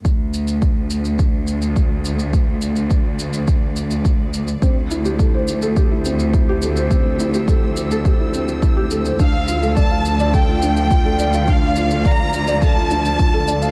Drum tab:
SH |x-xxx-xxx-xxx-xx|x-xxx-xxx-xxx-xx|x-xxx-xxx-xxx-xx|x-xxx-xxx-xxx-xx|
BD |o---o---o---o---|o---o---o---o---|o---o---o---o---|o---o---o---o---|

SH |x-xxx-xxx-xxx-xx|x-xxx-xxx-xxx-xx|
BD |o---o---o---o---|o---o---o---o---|